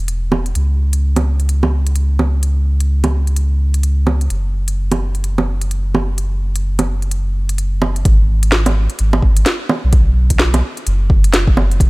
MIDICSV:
0, 0, Header, 1, 3, 480
1, 0, Start_track
1, 0, Tempo, 468750
1, 567, Time_signature, 4, 2, 24, 8
1, 12184, End_track
2, 0, Start_track
2, 0, Title_t, "Sub bass"
2, 0, Program_c, 0, 38
2, 0, Note_on_c, 0, 28, 85
2, 549, Note_off_c, 0, 28, 0
2, 562, Note_on_c, 0, 37, 86
2, 4385, Note_off_c, 0, 37, 0
2, 4403, Note_on_c, 0, 30, 86
2, 8226, Note_off_c, 0, 30, 0
2, 8244, Note_on_c, 0, 32, 104
2, 9092, Note_off_c, 0, 32, 0
2, 9212, Note_on_c, 0, 32, 81
2, 9434, Note_off_c, 0, 32, 0
2, 9446, Note_on_c, 0, 32, 98
2, 9671, Note_off_c, 0, 32, 0
2, 10077, Note_on_c, 0, 35, 87
2, 10877, Note_off_c, 0, 35, 0
2, 11128, Note_on_c, 0, 30, 105
2, 12075, Note_off_c, 0, 30, 0
2, 12085, Note_on_c, 0, 28, 105
2, 12184, Note_off_c, 0, 28, 0
2, 12184, End_track
3, 0, Start_track
3, 0, Title_t, "Drums"
3, 83, Note_on_c, 9, 42, 48
3, 186, Note_off_c, 9, 42, 0
3, 325, Note_on_c, 9, 61, 55
3, 427, Note_off_c, 9, 61, 0
3, 470, Note_on_c, 9, 42, 28
3, 566, Note_off_c, 9, 42, 0
3, 566, Note_on_c, 9, 42, 48
3, 668, Note_off_c, 9, 42, 0
3, 953, Note_on_c, 9, 42, 48
3, 1055, Note_off_c, 9, 42, 0
3, 1192, Note_on_c, 9, 42, 46
3, 1192, Note_on_c, 9, 61, 53
3, 1295, Note_off_c, 9, 42, 0
3, 1295, Note_off_c, 9, 61, 0
3, 1430, Note_on_c, 9, 42, 26
3, 1526, Note_off_c, 9, 42, 0
3, 1526, Note_on_c, 9, 42, 45
3, 1628, Note_off_c, 9, 42, 0
3, 1669, Note_on_c, 9, 61, 55
3, 1771, Note_off_c, 9, 61, 0
3, 1910, Note_on_c, 9, 42, 46
3, 2002, Note_off_c, 9, 42, 0
3, 2002, Note_on_c, 9, 42, 45
3, 2105, Note_off_c, 9, 42, 0
3, 2245, Note_on_c, 9, 61, 55
3, 2348, Note_off_c, 9, 61, 0
3, 2486, Note_on_c, 9, 42, 47
3, 2589, Note_off_c, 9, 42, 0
3, 2872, Note_on_c, 9, 42, 47
3, 2974, Note_off_c, 9, 42, 0
3, 3111, Note_on_c, 9, 42, 45
3, 3111, Note_on_c, 9, 61, 55
3, 3213, Note_off_c, 9, 42, 0
3, 3213, Note_off_c, 9, 61, 0
3, 3352, Note_on_c, 9, 42, 27
3, 3445, Note_off_c, 9, 42, 0
3, 3445, Note_on_c, 9, 42, 47
3, 3547, Note_off_c, 9, 42, 0
3, 3832, Note_on_c, 9, 42, 47
3, 3926, Note_off_c, 9, 42, 0
3, 3926, Note_on_c, 9, 42, 46
3, 4028, Note_off_c, 9, 42, 0
3, 4165, Note_on_c, 9, 61, 60
3, 4267, Note_off_c, 9, 61, 0
3, 4313, Note_on_c, 9, 42, 27
3, 4406, Note_off_c, 9, 42, 0
3, 4406, Note_on_c, 9, 42, 47
3, 4509, Note_off_c, 9, 42, 0
3, 4790, Note_on_c, 9, 42, 48
3, 4893, Note_off_c, 9, 42, 0
3, 5033, Note_on_c, 9, 42, 48
3, 5033, Note_on_c, 9, 61, 58
3, 5136, Note_off_c, 9, 42, 0
3, 5136, Note_off_c, 9, 61, 0
3, 5271, Note_on_c, 9, 42, 27
3, 5366, Note_off_c, 9, 42, 0
3, 5366, Note_on_c, 9, 42, 47
3, 5468, Note_off_c, 9, 42, 0
3, 5511, Note_on_c, 9, 61, 59
3, 5613, Note_off_c, 9, 61, 0
3, 5749, Note_on_c, 9, 42, 48
3, 5848, Note_off_c, 9, 42, 0
3, 5848, Note_on_c, 9, 42, 47
3, 5950, Note_off_c, 9, 42, 0
3, 6088, Note_on_c, 9, 61, 61
3, 6190, Note_off_c, 9, 61, 0
3, 6327, Note_on_c, 9, 42, 50
3, 6430, Note_off_c, 9, 42, 0
3, 6713, Note_on_c, 9, 42, 51
3, 6815, Note_off_c, 9, 42, 0
3, 6952, Note_on_c, 9, 42, 48
3, 6952, Note_on_c, 9, 61, 60
3, 7054, Note_off_c, 9, 42, 0
3, 7054, Note_off_c, 9, 61, 0
3, 7192, Note_on_c, 9, 42, 28
3, 7285, Note_off_c, 9, 42, 0
3, 7285, Note_on_c, 9, 42, 51
3, 7387, Note_off_c, 9, 42, 0
3, 7672, Note_on_c, 9, 42, 52
3, 7765, Note_off_c, 9, 42, 0
3, 7765, Note_on_c, 9, 42, 50
3, 7867, Note_off_c, 9, 42, 0
3, 8004, Note_on_c, 9, 61, 64
3, 8106, Note_off_c, 9, 61, 0
3, 8152, Note_on_c, 9, 42, 30
3, 8246, Note_off_c, 9, 42, 0
3, 8246, Note_on_c, 9, 36, 119
3, 8246, Note_on_c, 9, 42, 58
3, 8348, Note_off_c, 9, 36, 0
3, 8348, Note_off_c, 9, 42, 0
3, 8631, Note_on_c, 9, 42, 60
3, 8724, Note_on_c, 9, 38, 104
3, 8733, Note_off_c, 9, 42, 0
3, 8826, Note_off_c, 9, 38, 0
3, 8869, Note_on_c, 9, 42, 55
3, 8869, Note_on_c, 9, 61, 67
3, 8972, Note_off_c, 9, 42, 0
3, 8972, Note_off_c, 9, 61, 0
3, 9110, Note_on_c, 9, 42, 32
3, 9203, Note_off_c, 9, 42, 0
3, 9203, Note_on_c, 9, 42, 59
3, 9305, Note_off_c, 9, 42, 0
3, 9350, Note_on_c, 9, 61, 68
3, 9446, Note_on_c, 9, 36, 102
3, 9452, Note_off_c, 9, 61, 0
3, 9548, Note_off_c, 9, 36, 0
3, 9590, Note_on_c, 9, 42, 56
3, 9687, Note_off_c, 9, 42, 0
3, 9687, Note_on_c, 9, 38, 101
3, 9687, Note_on_c, 9, 42, 57
3, 9789, Note_off_c, 9, 38, 0
3, 9789, Note_off_c, 9, 42, 0
3, 9926, Note_on_c, 9, 61, 69
3, 10029, Note_off_c, 9, 61, 0
3, 10164, Note_on_c, 9, 42, 57
3, 10165, Note_on_c, 9, 36, 123
3, 10266, Note_off_c, 9, 42, 0
3, 10268, Note_off_c, 9, 36, 0
3, 10549, Note_on_c, 9, 42, 57
3, 10551, Note_on_c, 9, 36, 61
3, 10644, Note_on_c, 9, 38, 112
3, 10651, Note_off_c, 9, 42, 0
3, 10653, Note_off_c, 9, 36, 0
3, 10747, Note_off_c, 9, 38, 0
3, 10792, Note_on_c, 9, 42, 55
3, 10792, Note_on_c, 9, 61, 65
3, 10894, Note_off_c, 9, 42, 0
3, 10894, Note_off_c, 9, 61, 0
3, 11030, Note_on_c, 9, 42, 32
3, 11126, Note_off_c, 9, 42, 0
3, 11126, Note_on_c, 9, 42, 57
3, 11229, Note_off_c, 9, 42, 0
3, 11365, Note_on_c, 9, 36, 109
3, 11467, Note_off_c, 9, 36, 0
3, 11512, Note_on_c, 9, 42, 58
3, 11608, Note_off_c, 9, 42, 0
3, 11608, Note_on_c, 9, 38, 106
3, 11608, Note_on_c, 9, 42, 57
3, 11710, Note_off_c, 9, 38, 0
3, 11710, Note_off_c, 9, 42, 0
3, 11750, Note_on_c, 9, 36, 112
3, 11848, Note_on_c, 9, 61, 67
3, 11852, Note_off_c, 9, 36, 0
3, 11950, Note_off_c, 9, 61, 0
3, 11996, Note_on_c, 9, 42, 33
3, 12085, Note_on_c, 9, 36, 125
3, 12089, Note_off_c, 9, 42, 0
3, 12089, Note_on_c, 9, 42, 56
3, 12184, Note_off_c, 9, 36, 0
3, 12184, Note_off_c, 9, 42, 0
3, 12184, End_track
0, 0, End_of_file